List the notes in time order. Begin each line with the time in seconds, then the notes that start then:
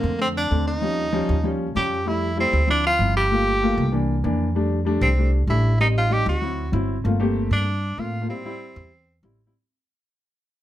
Already playing: D3 A3 A#3 C4
0.03 F2
0.18 D3 A3 C4
0.37 D4
0.51 D#2 D3 A3 C4
0.68 D#4
0.81 F3 G3 C#4
1.12 F3 G3 C#4
1.29 D#2
1.44 F3 G3 C#4
1.75 F2 F3 G3 C#4 G4
2.05 G3 A3 E4
2.36 G3 A3 C4 E4
2.53 D2
2.67 F3 C4 D4 E4
2.87 F4
2.99 G1 F3 C4 E4
3.17 G4
3.30 A3 A#3 F4
3.62 A3 A#3 F4
3.78 C2
3.92 E3 A#3 D4
4.24 F2 E3 A#3 D4
4.55 G3 A3 D4
4.85 G3 A3 D4
5.01 C2 C4
5.17 G3 A3 D4
5.47 A1 G3 A3 D4 E4
5.80 G3 C4 D#4
5.98 F4
6.10 G3 C4 D#4 G4
6.26 D2 F#4
6.41 F#3 C4 E4
6.72 G1 F#3 C4 E4
7.04 G1 A3 A#3 C4 F4
7.20 A3 A#3 C4 G4
7.51 G2 D4
7.97 A2 A3 A#3 C4 F4
8.21 A3 A#3 C4 F4
8.29 G3 C4 E4
8.45 G3 C4 E4
8.76 E2
9.23 A1 G3 C4 E4
9.46 G3 C4 E4